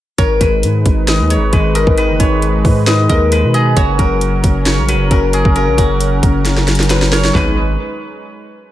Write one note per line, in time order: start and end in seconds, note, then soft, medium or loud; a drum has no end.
0.18 0.40 G#1 loud
0.18 1.07 D#3 medium
0.18 3.73 G#3 medium
0.18 3.73 D#4 medium
0.18 0.47 A#4 loud
0.18 3.73 B4 medium
0.18 0.61 C#5 medium
0.18 kick loud
0.18 closed hi-hat medium
0.41 0.65 G#1 loud
0.41 1.29 G#3 medium
0.41 1.52 B4 medium
0.41 kick medium
0.41 closed hi-hat medium
0.63 0.84 G#2 loud
0.63 closed hi-hat medium
0.86 1.21 G#1 loud
0.86 kick medium
0.86 closed hi-hat medium
1.08 1.97 D#3 medium
1.08 2.86 D#5 medium
1.08 snare loud
1.08 closed hi-hat medium
1.20 1.38 D#2 loud
1.30 1.52 G#3 medium
1.30 2.20 C#5 medium
1.30 closed hi-hat medium
1.36 1.52 G#1 loud
1.53 1.86 G#1 loud
1.53 2.19 G#3 medium
1.53 1.81 B4 medium
1.53 kick medium
1.53 closed hi-hat medium
1.75 2.04 A#4 medium
1.75 2.87 D#5 medium
1.75 closed hi-hat medium
1.87 2.11 G#1 loud
1.87 kick loud
1.98 2.86 D#3 medium
1.98 3.16 B4 loud
1.98 closed hi-hat medium
2.09 2.19 F#1 loud
2.20 2.63 G#1 loud
2.20 3.08 G#3 medium
2.20 4.11 C#5 medium
2.20 kick medium
2.20 closed hi-hat medium
2.42 closed hi-hat medium
2.65 3.08 G#2 loud
2.65 kick medium
2.65 open hi-hat medium
2.87 3.77 D#3 medium
2.87 3.08 B4 medium
2.87 4.66 D#5 medium
2.87 snare loud
2.87 closed hi-hat medium
3.09 3.45 D#2 loud
3.09 3.31 G#3 medium
3.09 3.38 A#4 medium
3.09 3.52 D#5 medium
3.09 kick loud
3.09 closed hi-hat medium
3.32 3.77 G#3 medium
3.32 4.05 B4 medium
3.32 closed hi-hat medium
3.44 3.75 B2 loud
3.54 5.33 G#4 medium
3.54 3.77 D#5 medium
3.54 3.76 D#5 medium
3.54 closed hi-hat medium
3.77 3.98 F#1 loud
3.77 4.65 C#3 medium
3.77 7.31 F#3 medium
3.77 7.31 C#4 medium
3.77 5.77 F#4 loud
3.77 7.31 A#4 medium
3.77 4.19 C#5 loud
3.77 kick loud
3.77 closed hi-hat medium
3.99 4.42 F#1 loud
3.99 4.87 F#3 medium
3.99 4.95 A#4 medium
3.99 kick medium
3.99 closed hi-hat medium
4.21 closed hi-hat medium
4.44 4.79 F#1 loud
4.44 kick medium
4.44 closed hi-hat medium
4.66 5.55 C#3 medium
4.66 6.57 C#5 medium
4.66 snare loud
4.66 closed hi-hat medium
4.78 4.96 A#1 loud
4.89 5.10 F#3 medium
4.89 5.17 B4 medium
4.89 closed hi-hat medium
4.94 5.10 F#1 loud
5.11 5.44 F#1 loud
5.11 5.77 F#3 medium
5.11 5.55 A#4 medium
5.11 kick medium
5.11 closed hi-hat medium
5.33 7.61 G#4 medium
5.33 6.45 C#5 medium
5.33 closed hi-hat medium
5.45 5.69 F#1 loud
5.45 kick loud
5.56 6.44 C#3 medium
5.56 5.76 A#4 loud
5.56 closed hi-hat medium
5.68 5.78 A#1 medium
5.78 6.21 F#1 loud
5.78 6.67 F#3 medium
5.78 7.08 F#4 medium
5.78 kick medium
5.78 closed hi-hat medium
6.01 closed hi-hat medium
6.23 7.31 F#1 loud
6.23 kick medium
6.23 closed hi-hat medium
6.45 7.35 C#3 medium
6.45 snare medium
6.45 closed hi-hat medium
6.57 snare medium
6.68 6.89 F#3 medium
6.68 snare medium
6.68 closed hi-hat medium
6.75 closed hi-hat medium
6.80 snare medium
6.80 closed hi-hat medium
6.90 7.35 F#3 medium
6.90 7.11 B4 medium
6.90 snare medium
6.90 closed hi-hat medium
7.02 snare medium
7.12 7.34 A#4 medium
7.12 7.35 C#5 medium
7.12 7.33 C#5 medium
7.12 snare loud
7.12 open hi-hat medium
7.24 snare loud
7.35 7.76 G#1 loud
7.35 7.56 D#3 medium
7.35 7.56 G#3 medium
7.35 7.56 B3 medium
7.35 7.56 D#4 medium
7.35 7.56 B4 medium
7.35 kick loud
7.35 clap medium
7.35 floor tom loud